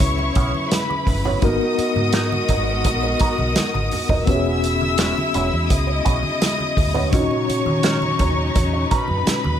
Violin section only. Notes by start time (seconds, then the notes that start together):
Already playing: C#5 C#6
0.70 B4 B5
1.42 D#5 D#6
4.27 E5 E6
5.70 D#5 D#6
7.14 C#5 C#6
8.91 B4 B5